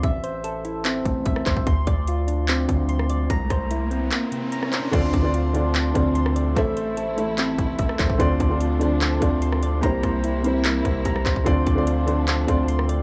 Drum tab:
CC |----------------|----------------|----------------|x---------------|
HH |x-x-x-x-x-x-x-x-|x-x-x-x-x-x-x-x-|x-x-x-x-x-x-x-x-|x-x-x-x-x-x-x-x-|
CP |--------x-----x-|--------x-------|--------x-----x-|--------x-------|
SD |-------------r--|-------------r--|--r----------r--|-------------r--|
BD |o---------o-o-oo|o-o-------o-----|o-o-------------|o-o-------o-----|

CC |----------------|----------------|----------------|----------------|
HH |x-x-x-x-x-x-x-x-|x-x-x-x-x-x-x-x-|x-x-x-x-x-x-x-x-|x-x-x-x-x-x-x-x-|
CP |--------x-----x-|--------x-------|--------x-----x-|--------x-------|
SD |-------------r--|-------------r--|--r----------r--|-------------r--|
BD |o---------o-o-oo|o-o-------o-----|o-o-------o-o-oo|o-o-------o-----|